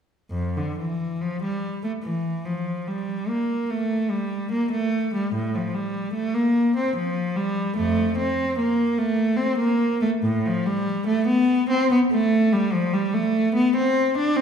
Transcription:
0.31 0.55 F2 soft
0.57 0.79 D3 soft
0.78 1.21 E3 soft
1.21 1.42 F3 soft
1.42 1.83 G3 soft
1.84 1.92 A3 soft
2.03 2.45 E3 soft
2.45 2.87 F3 soft
2.87 3.29 G3 soft
3.29 3.70 A#3 soft
3.70 4.11 A3 medium
4.10 4.51 G3 medium
4.51 4.72 A#3 medium
4.72 5.12 A3 medium
5.14 5.34 G3 soft
5.34 5.54 A2 medium
5.55 5.75 F3 soft
5.74 6.14 G3 soft
6.14 6.34 A3 medium
6.34 6.75 A#3 medium
6.76 6.96 C4 medium
6.96 7.37 F3 medium
7.36 7.77 G3 medium
7.76 8.14 F2 soft
7.76 8.16 A3 medium
8.17 8.57 C4 medium
8.58 8.98 A#3 medium
8.98 9.39 A3 medium
9.36 9.58 C4 medium
9.58 10.00 A#3 medium
10.02 10.10 A3 medium
10.23 10.45 A2 medium
10.46 10.67 F3 medium
10.66 11.08 G3 medium
11.07 11.28 A3 medium
11.27 11.69 B3 medium
11.70 11.90 C4 medium
11.91 11.99 B3 medium
12.12 12.52 A3 medium
12.52 12.73 G3 medium
12.72 12.93 F3 medium
12.93 13.14 G3 medium
13.14 13.55 A3 medium
13.55 13.75 B3 medium
13.76 14.16 C4 medium
14.17 14.37 D4 medium
14.37 14.41 C4 medium

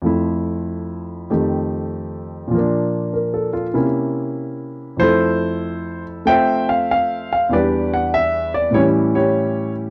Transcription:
0.02 1.29 F2 soft
0.02 1.30 F3 soft
0.02 1.29 A3 soft
0.06 1.31 E4 soft
1.30 2.53 F2 soft
1.30 2.53 D#3 soft
1.30 2.54 A3 soft
1.30 2.54 G4 soft
2.48 3.72 A#2 soft
2.48 3.74 F3 soft
2.55 3.73 A#3 soft
2.59 3.78 D4 soft
3.13 3.52 A#4 soft
3.34 3.66 A4 soft
3.53 3.86 F4 soft
3.74 5.00 C3 soft
3.74 5.00 A#3 soft
3.74 5.01 C#4 soft
3.74 5.00 E4 soft
4.97 7.51 F2 soft
4.97 7.52 F3 soft
4.97 6.24 A3 soft
4.97 6.02 C5 medium
5.01 6.25 E4 medium
5.01 6.24 A4 medium
6.25 7.52 A3 soft
6.25 7.52 C4 soft
6.25 7.53 F4 soft
6.25 7.49 C5 medium
6.25 7.49 E5 medium
6.25 6.67 G5 medium
6.69 6.90 F5 medium
6.91 7.31 F5 medium
7.33 7.54 F5 medium
7.49 8.73 E2 soft
7.49 8.71 E3 soft
7.49 8.73 G3 soft
7.49 8.70 G4 soft
7.49 7.95 D5 medium
7.53 8.75 D4 soft
7.53 8.71 B4 soft
7.94 8.14 F#5 medium
8.14 8.52 E5 medium
8.54 8.75 D5 medium
8.71 9.90 A2 soft
8.71 9.90 E3 soft
8.71 9.90 G3 soft
8.71 9.15 E4 medium
8.71 8.83 C#5 medium
8.75 9.90 C#4 soft
8.75 9.14 G4 soft
9.15 9.90 E4 soft
9.15 9.90 G4 soft
9.15 9.72 C#5 medium

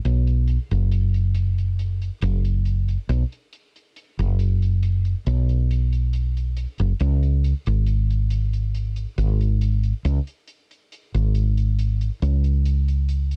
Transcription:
0.05 0.57 B1 medium
0.05 closed hi-hat medium
0.27 closed hi-hat medium
0.47 closed hi-hat medium
0.71 2.09 F#1 medium
0.71 closed hi-hat soft
0.91 closed hi-hat medium
1.14 closed hi-hat medium
1.34 closed hi-hat loud
1.58 closed hi-hat medium
1.79 closed hi-hat medium
2.02 closed hi-hat soft
2.21 2.96 F#1 medium
2.21 closed hi-hat medium
2.45 closed hi-hat medium
2.65 closed hi-hat medium
2.88 closed hi-hat medium
3.09 3.23 B1 medium
3.09 closed hi-hat loud
3.32 closed hi-hat medium
3.53 closed hi-hat medium
3.76 closed hi-hat soft
3.96 closed hi-hat medium
4.19 5.14 F#1 medium
4.19 closed hi-hat medium
4.39 closed hi-hat medium
4.62 closed hi-hat medium
4.83 closed hi-hat medium
5.05 closed hi-hat medium
5.26 6.65 B1 medium
5.26 closed hi-hat medium
5.49 closed hi-hat soft
5.71 closed hi-hat medium
5.93 closed hi-hat medium
6.13 closed hi-hat medium
6.37 closed hi-hat medium
6.57 closed hi-hat medium
6.78 6.92 F#1 medium
6.78 closed hi-hat medium
7.00 7.52 C#2 medium
7.00 closed hi-hat medium
7.23 closed hi-hat soft
7.44 closed hi-hat medium
7.66 9.05 G#1 medium
7.66 closed hi-hat soft
7.86 closed hi-hat medium
8.10 closed hi-hat medium
8.30 closed hi-hat medium
8.53 closed hi-hat medium
8.75 closed hi-hat medium
8.96 closed hi-hat medium
9.18 9.92 G#1 medium
9.18 closed hi-hat medium
9.41 closed hi-hat soft
9.61 closed hi-hat medium
9.83 closed hi-hat soft
10.05 10.19 C#2 medium
10.05 closed hi-hat medium
10.27 closed hi-hat medium
10.48 closed hi-hat medium
10.71 closed hi-hat medium
10.92 closed hi-hat medium
11.14 12.09 G#1 medium
11.14 closed hi-hat medium
11.35 closed hi-hat medium
11.57 closed hi-hat medium
11.79 closed hi-hat medium
12.01 closed hi-hat medium
12.22 13.36 C#2 medium
12.22 closed hi-hat medium
12.44 closed hi-hat medium
12.65 closed hi-hat medium
12.88 closed hi-hat medium
13.09 closed hi-hat medium
13.31 closed hi-hat soft

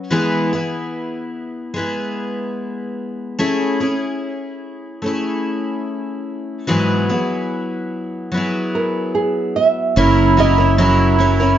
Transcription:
0.00 0.10 F#3 medium
0.00 0.11 C#4 medium
0.00 0.12 F#4 medium
0.00 0.12 B4 medium
0.10 0.52 E3 medium
0.10 0.52 G#3 medium
0.10 0.52 B3 medium
0.10 0.53 E4 medium
0.10 0.51 G#4 medium
0.53 1.75 B3 soft
0.53 1.77 E4 soft
0.53 1.79 G#4 soft
1.74 3.38 G#3 medium
1.74 3.39 B3 medium
1.74 3.39 E4 medium
1.79 3.40 G#4 medium
3.39 3.80 A3 medium
3.39 3.80 C#4 medium
3.39 3.80 E4 medium
3.39 3.79 G#4 medium
3.80 5.03 C#4 soft
3.80 5.06 E4 soft
3.80 5.05 G#4 soft
5.02 6.67 A3 medium
5.02 6.68 C#4 soft
5.06 6.68 E4 medium
5.06 6.68 G#4 medium
6.67 7.09 G#2 medium
6.67 7.09 E3 medium
6.67 7.09 F#3 medium
6.67 7.10 B3 medium
6.67 7.09 E4 medium
6.67 7.08 G#4 medium
7.09 8.30 F#3 soft
7.09 8.33 B3 soft
7.09 8.33 E4 soft
7.09 8.33 G#4 medium
8.32 9.95 F#3 medium
8.32 9.96 B3 medium
8.32 9.96 E4 medium
8.37 9.98 G#4 medium
8.75 9.13 A#4 medium
9.15 9.57 G#4 medium
9.56 10.40 E5 medium
9.96 11.57 F#1 medium
9.96 10.36 F#3 medium
9.96 10.37 C#4 medium
9.96 10.38 E4 medium
9.96 11.58 E4 medium
9.96 10.38 A#4 medium
10.37 10.58 F#3 medium
10.37 10.58 C#4 medium
10.37 10.58 E4 medium
10.37 10.57 A#4 medium
10.37 11.17 D#5 medium
10.58 10.77 C#4 soft
10.58 10.78 E4 soft
10.58 10.79 A#4 soft
10.78 11.17 F#3 medium
10.78 11.18 C#4 medium
10.78 11.19 E4 medium
10.78 11.20 A#4 medium
11.19 11.40 F#3 medium
11.19 11.40 C#4 medium
11.19 11.40 E4 medium
11.19 11.39 A#4 medium
11.40 11.58 C#4 soft
11.40 11.58 E4 soft
11.40 11.58 A#4 soft

